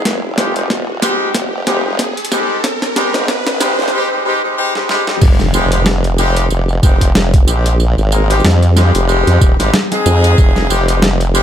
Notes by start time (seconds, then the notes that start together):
Already playing: riser
0.05 F1, kick, snare, closed hi-hat
0.37 G3 G#3 C4 D#4 G4, snare, closed hi-hat
0.56 G3 G#3 C4 D#4 G4, closed hi-hat
0.70 E1, kick, snare
1.02 G3 G#3 C4 D#4 G4, snare, closed hi-hat, tambourine
1.34 F1, kick, snare, closed hi-hat
1.66 F1 G3 G#3 C4 D#4 G4, snare, closed hi-hat
1.85 G3 G#3 C4 D#4 G4
1.99 kick, snare, closed hi-hat
2.17 closed hi-hat
2.25 closed hi-hat
2.31 G3 G#3 C4 D#4 G4, snare, tambourine
2.64 kick, snare, closed hi-hat
2.82 snare
2.96 G3 G#3 C4 D#4 G4, snare, closed hi-hat
3.14 G#1 G3 G#3 C4 D#4 G4, snare, closed hi-hat
3.28 kick, snare
3.47 snare
3.60 G3 G#3 C4 D#4 G4, snare, closed hi-hat, tambourine
3.78 F1 G3 G#3 C4 D#4 G4, snare
3.82 snare
3.88 snare
3.93 G3 G#3 C4 D#4 G4
4.11 G3 G#3 C4 D#4 G4
4.25 G3 G#3 C4 D#4 G4
4.43 G3 G#3 C4 D#4 G4
4.57 G3 G#3 C4 D#4 G4
4.75 G3 G#3 C4 D#4 G4, snare
4.89 G3 G#3 C4 D#4 G4, snare
5.07 G3 G#3 C4 D#4 G4, snare
5.21 F1, kick, crash, tambourine, impact
5.40 snare, tambourine
5.54 F1 G3 G#3 C4 D#4 G4, tambourine
5.72 G3 G#3 C4 D#4 G4, closed hi-hat, tambourine
5.86 snare, tambourine
6.04 closed hi-hat, tambourine
6.18 G3 G#3 C4 D#4 G4, tambourine
6.37 closed hi-hat, tambourine
6.50 F1, tambourine
6.69 tambourine
6.83 F1 G3 G#3 C4 D#4 G4, kick, tambourine
7.01 kick, closed hi-hat, tambourine
7.15 F1, snare, tambourine
7.34 kick, closed hi-hat, tambourine
7.47 A#1 G3 G#3 C4 D#4 G4, tambourine
7.66 closed hi-hat, tambourine
7.80 tambourine
7.97 G#1, tambourine
8.12 G#3 A#3 C4 D#4 A#4, tambourine
8.30 G3 G#3 C4 D#4 G4, closed hi-hat, tambourine
8.40 tambourine
8.44 F2, snare, tambourine
8.51 tambourine
8.63 closed hi-hat, tambourine
8.76 G3 G#3 C4 D#4 G4, snare, tambourine
8.95 F1, closed hi-hat, tambourine
9.08 G3 G#3 C4 D#4 G4, tambourine
9.27 F2, closed hi-hat, tambourine
9.41 D#1, kick, tambourine
9.59 G#1 G3 G#3 C4 D#4 G4, snare, closed hi-hat, tambourine
9.74 snare, tambourine
9.91 G#3 C4 D#4 G#4, snare, closed hi-hat, tambourine
10.06 F2, tambourine
10.24 closed hi-hat, tambourine
10.38 F1, kick, tambourine
10.56 snare, tambourine
10.70 F1 G3 G#3 C4 D#4 G4, tambourine
10.88 G3 G#3 C4 D#4 G4, closed hi-hat, tambourine
11.02 snare, tambourine
11.21 closed hi-hat, tambourine
11.34 G3 G#3 C4 D#4 G4, tambourine